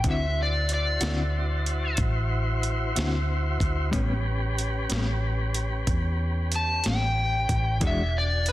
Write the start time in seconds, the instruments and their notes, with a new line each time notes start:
0.04 fingered electric bass D2, clean electric guitar D3 C4 E4 F#4, tonewheel organ E4 F#4 C5, kick, closed hi-hat
0.10 electric slide guitar E5
0.43 electric slide guitar D5
0.69 closed hi-hat
0.74 electric slide guitar D5
1.01 fingered electric bass D2, clean electric guitar D3 C4 E4 F#4, snare, closed hi-hat
1.66 closed hi-hat
1.97 fingered electric bass A1, kick, closed hi-hat
2.63 closed hi-hat
2.95 fingered electric bass D2, clean electric guitar D3 C4 E4 F#4, snare, closed hi-hat
3.60 fingered electric bass D2, kick, closed hi-hat
3.91 fingered electric bass A1, clean electric guitar A2 G3 B3 C#4, tonewheel organ C#4 G4 B4, kick, closed hi-hat
4.58 closed hi-hat
4.89 fingered electric bass A1, clean electric guitar A2 G3 B3 C#4, snare, closed hi-hat
5.54 closed hi-hat
5.87 fingered electric bass E2, kick, closed hi-hat
6.52 closed hi-hat
6.56 electric slide guitar A5
6.84 fingered electric bass A1, clean electric guitar A2 G3 B3 C#4, snare, closed hi-hat
6.90 electric slide guitar G5
7.49 fingered electric bass A1, kick, closed hi-hat
7.80 fingered electric bass E1, clean electric guitar E3 G#3 D4 F#4, tonewheel organ D4 F#4 G#5, kick, closed hi-hat
7.87 electric slide guitar E5
8.18 electric slide guitar D5
8.46 electric slide guitar B4, closed hi-hat